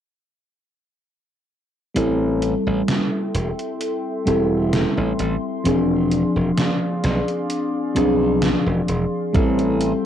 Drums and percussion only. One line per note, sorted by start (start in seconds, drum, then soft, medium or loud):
1.96 closed hi-hat medium
2.42 closed hi-hat medium
2.88 snare loud
2.88 closed hi-hat medium
3.35 closed hi-hat medium
3.59 closed hi-hat soft
3.81 closed hi-hat medium
4.27 closed hi-hat medium
4.73 snare loud
4.73 closed hi-hat medium
5.19 closed hi-hat medium
5.65 closed hi-hat medium
6.11 closed hi-hat medium
6.58 snare loud
6.58 closed hi-hat medium
7.04 snare medium
7.04 closed hi-hat medium
7.28 closed hi-hat soft
7.50 closed hi-hat medium
7.96 closed hi-hat medium
8.42 snare loud
8.42 closed hi-hat medium
8.88 closed hi-hat medium
9.34 kick loud
9.34 closed hi-hat medium
9.59 closed hi-hat soft
9.81 closed hi-hat medium